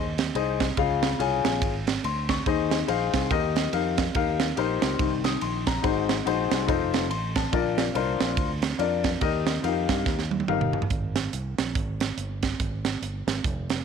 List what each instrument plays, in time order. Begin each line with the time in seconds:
Already playing: fingered electric bass D#2
0.18 snare, ride
0.35 fingered electric bass C2, upright piano D#4 G#4 C5 D#5, ride
0.60 kick, snare, ride
0.77 fingered electric bass C#2, upright piano C#3 F4 G#4 C#5 F5, kick, ride
1.03 snare, ride
1.19 fingered electric bass C2, upright piano F4 G#4 C#5 G#5, ride
1.45 fingered electric bass A#1, snare, ride
1.62 fingered electric bass G#1, kick, ride
1.87 snare, ride
2.04 fingered electric bass D2, upright piano C6, ride
2.29 upright piano C#6, kick, snare, ride
2.46 fingered electric bass D#2, upright piano D#3 D#4 G#4 C5 D#5, kick, ride
2.71 snare, ride
2.87 fingered electric bass A#1, upright piano D#4 G#4 C5 F5, ride
3.14 fingered electric bass C2, kick, snare, ride
3.30 fingered electric bass D#2, upright piano D#3 D#4 G4 A#4 D#5, kick, ride
3.56 snare, ride
3.72 fingered electric bass F2, upright piano D#4 G4 A#4 F5, ride
3.98 kick, snare, ride
4.15 fingered electric bass D#2, upright piano D#4 G4 A#4 F5, kick, ride
4.40 snare, ride
4.56 fingered electric bass A#1, upright piano D#4 G4 A#4 C5, ride
4.82 fingered electric bass C#2, snare, ride
4.99 fingered electric bass C2, upright piano D#3, kick, ride
5.24 upright piano D#6, snare, ride
5.41 fingered electric bass A#1, upright piano C6, ride
5.67 upright piano A#5, kick, snare, ride
5.82 fingered electric bass G#1, upright piano G#2 D#4 F#4 G#4 C5, kick, ride
6.09 snare, ride
6.25 fingered electric bass A#1, upright piano D#4 F#4 G#4 C5, ride
6.52 fingered electric bass C2, snare, ride
6.67 fingered electric bass F1, upright piano D#4 F4 A4 C5, kick, ride
6.94 snare, ride
7.10 fingered electric bass A1, upright piano C6, ride
7.36 upright piano A5, kick, snare, ride
7.52 fingered electric bass A#1, upright piano A#2 D4 F4 A#4 D5, kick, ride
7.78 snare, ride
7.95 fingered electric bass C2, upright piano D4 F4 A#4 C5, ride
8.20 fingered electric bass A#1, snare, ride
8.37 fingered electric bass D2, kick, ride
8.62 snare, ride
8.79 fingered electric bass F2, upright piano D4 F4 A#4 D5, ride
9.04 kick, snare, ride
9.21 fingered electric bass D#2, upright piano D#3 D#4 G4 A#4 D#5, kick, ride
9.47 snare, ride
9.63 fingered electric bass F2, upright piano D#4 F4 A#4 F5, ride
9.68 upright piano G4
9.89 fingered electric bass G2, kick, snare, ride
10.06 fingered electric bass D#2, kick, snare
10.19 snare
10.31 high tom
10.40 high tom
10.48 fingered electric bass G1, upright piano D#4 G4 A#4 F5, mid tom
10.61 mid tom
10.73 floor tom
10.82 floor tom
10.90 fingered electric bass G#1, kick, closed hi-hat
11.16 snare, closed hi-hat
11.33 fingered electric bass C2, closed hi-hat
11.58 fingered electric bass A#1, snare, closed hi-hat
11.75 fingered electric bass G#1, kick, closed hi-hat
12.00 snare, closed hi-hat
12.17 fingered electric bass G1, closed hi-hat
12.43 kick, snare, closed hi-hat
12.60 fingered electric bass G#1, kick, closed hi-hat
12.85 snare, closed hi-hat
13.02 fingered electric bass G1, closed hi-hat
13.27 fingered electric bass G#1, snare, closed hi-hat
13.44 fingered electric bass F1, kick, closed hi-hat
13.70 snare, closed hi-hat